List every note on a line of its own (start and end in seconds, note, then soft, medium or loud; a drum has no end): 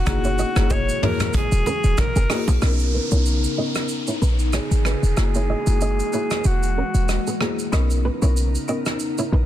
0.00 2.58 C#4 medium
0.06 0.45 F#1 loud
0.06 2.60 E3 medium
0.06 2.60 G#3 medium
0.06 0.52 A#3 medium
0.06 0.52 E4 medium
0.06 2.60 F#4 medium
0.06 0.52 F#4 medium
0.06 0.73 F#4 loud
0.06 0.52 G#4 loud
0.06 kick loud
0.06 cross-stick medium
0.06 hi-hat pedal medium
0.06 low conga medium
0.06 shaker medium
0.24 0.36 E4 medium
0.24 0.35 C#5 medium
0.24 shaker medium
0.38 0.53 F#4 medium
0.38 0.52 D#5 medium
0.38 shaker medium
0.56 0.91 F#1 loud
0.56 0.78 A#3 medium
0.56 0.78 E4 medium
0.56 0.78 F#4 medium
0.56 0.78 G#4 medium
0.56 cross-stick loud
0.56 low bongo medium
0.56 shaker medium
0.70 0.84 F#4 medium
0.70 1.03 C#5 loud
0.70 0.84 D#5 medium
0.70 kick loud
0.70 high bongo medium
0.70 shaker medium
0.89 shaker medium
1.02 1.26 A#3 medium
1.02 1.26 E4 medium
1.02 1.16 E4 medium
1.02 1.26 F#4 medium
1.02 1.26 G#4 medium
1.02 1.37 A#4 loud
1.02 1.16 C#5 medium
1.02 mid tom loud
1.02 open hi-hat medium
1.20 cross-stick medium
1.20 mid tom loud
1.20 shaker medium
1.33 2.01 G#4 loud
1.33 kick loud
1.33 hi-hat pedal medium
1.33 low conga medium
1.33 shaker medium
1.52 1.63 E1 loud
1.52 shaker medium
1.66 1.80 C#4 medium
1.66 1.80 A#4 medium
1.66 low bongo medium
1.66 low conga medium
1.66 shaker medium
1.84 1.95 E1 medium
1.84 shaker soft
1.98 2.49 A#4 medium
1.98 kick medium
1.98 cross-stick medium
1.98 high bongo medium
1.98 shaker medium
2.16 2.27 F#1 loud
2.16 2.27 B3 medium
2.16 2.27 G#4 medium
2.16 shaker medium
2.30 2.54 A#3 medium
2.30 2.44 B3 medium
2.30 2.54 E4 medium
2.30 2.54 F#4 medium
2.30 2.54 G#4 medium
2.30 2.44 G#4 medium
2.30 cross-stick loud
2.30 open hi-hat medium
2.30 high bongo medium
2.30 shaker medium
2.48 2.59 A#1 medium
2.48 high bongo medium
2.48 low bongo medium
2.48 shaker soft
2.62 3.00 B1 loud
2.62 5.15 C#3 medium
2.62 3.07 B3 medium
2.62 5.15 B3 medium
2.62 3.07 C#4 medium
2.62 5.15 D#4 medium
2.62 3.07 D#4 medium
2.62 2.76 F#4 medium
2.62 5.15 A#4 medium
2.62 3.08 A#4 medium
2.62 3.86 A#4 loud
2.62 2.75 D#5 medium
2.62 cross-stick medium
2.62 downlifter medium
2.62 shaker medium
2.79 shaker soft
2.94 3.08 D#4 medium
2.94 3.07 B4 medium
3.11 3.47 B1 loud
3.11 3.33 B3 medium
3.11 3.33 C#4 medium
3.11 3.33 D#4 medium
3.11 3.23 E4 medium
3.11 3.34 A#4 medium
3.11 3.22 C#5 medium
3.11 shaker medium
3.26 shaker medium
3.44 shaker medium
3.58 3.81 B3 medium
3.58 3.81 C#4 medium
3.58 3.82 D#4 medium
3.58 3.72 F#4 medium
3.58 3.82 A#4 medium
3.58 3.71 D#5 medium
3.75 cross-stick medium
3.75 shaker medium
3.89 shaker medium
4.07 4.19 E4 medium
4.07 4.18 C#5 medium
4.07 shaker medium
4.22 4.59 A#1 medium
4.22 4.35 D#4 medium
4.22 4.35 B4 medium
4.22 shaker soft
4.39 shaker soft
4.53 4.67 F#4 medium
4.53 6.48 G#4 loud
4.53 4.67 C#5 medium
4.53 cross-stick medium
4.53 shaker medium
4.71 4.96 G#1 medium
4.71 shaker medium
4.85 4.99 D#4 medium
4.85 4.99 B4 medium
4.85 cross-stick loud
4.85 shaker soft
5.03 5.14 E1 medium
5.03 shaker soft
5.17 5.55 F#1 loud
5.17 7.70 E3 medium
5.17 7.70 G#3 medium
5.17 5.63 A#3 medium
5.17 7.70 A#3 medium
5.17 5.63 E4 medium
5.17 7.70 F#4 medium
5.17 5.63 F#4 medium
5.17 5.63 G#4 loud
5.17 cross-stick medium
5.17 shaker medium
5.35 5.46 E4 medium
5.35 5.46 C#5 medium
5.35 shaker soft
5.50 5.63 F#4 medium
5.50 5.63 D#5 medium
5.67 6.02 F#1 medium
5.67 5.89 A#3 medium
5.67 5.89 E4 medium
5.67 5.89 F#4 medium
5.67 5.89 G#4 medium
5.67 shaker medium
5.81 5.95 F#4 medium
5.81 5.95 D#5 medium
5.81 shaker medium
6.00 shaker medium
6.13 6.37 A#3 medium
6.13 6.37 E4 medium
6.13 6.27 E4 medium
6.13 6.37 F#4 medium
6.13 6.37 G#4 medium
6.13 6.26 C#5 medium
6.13 shaker soft
6.31 cross-stick medium
6.31 shaker medium
6.44 6.83 E1 loud
6.44 7.41 F#4 loud
6.44 shaker medium
6.63 shaker medium
6.78 6.91 C#4 medium
6.78 6.90 A#4 medium
6.94 7.19 E1 medium
6.94 shaker soft
7.09 cross-stick medium
7.09 shaker medium
7.27 7.38 B3 medium
7.27 7.38 G#4 medium
7.27 shaker medium
7.41 7.64 A#3 medium
7.41 7.55 B3 medium
7.41 7.64 E4 medium
7.41 7.64 F#4 medium
7.41 7.65 G#4 medium
7.41 7.54 G#4 medium
7.41 cross-stick loud
7.59 shaker soft
7.72 8.10 B1 loud
7.72 9.46 C#3 medium
7.72 8.18 B3 medium
7.72 9.46 B3 medium
7.72 8.18 C#4 medium
7.72 8.18 D#4 medium
7.72 9.46 D#4 medium
7.72 7.87 F#4 medium
7.72 8.18 A#4 loud
7.72 9.46 A#4 medium
7.72 7.86 D#5 medium
7.72 cross-stick medium
7.72 shaker medium
7.90 shaker soft
8.05 8.18 D#4 medium
8.05 8.18 B4 medium
8.22 8.57 B1 loud
8.22 8.44 B3 medium
8.22 8.44 C#4 medium
8.22 8.44 D#4 medium
8.22 8.34 E4 medium
8.22 8.44 A#4 medium
8.22 8.33 C#5 medium
8.22 shaker medium
8.37 shaker medium
8.55 shaker medium
8.68 8.92 B3 medium
8.68 8.92 C#4 medium
8.68 8.92 D#4 medium
8.68 8.82 F#4 medium
8.68 8.92 A#4 medium
8.68 8.82 D#5 medium
8.68 shaker soft
8.86 cross-stick medium
8.86 shaker medium
9.00 shaker medium
9.18 9.29 E4 medium
9.18 9.29 C#5 medium
9.18 shaker medium
9.32 9.46 A#1 medium
9.32 9.46 D#4 medium
9.32 9.46 B4 medium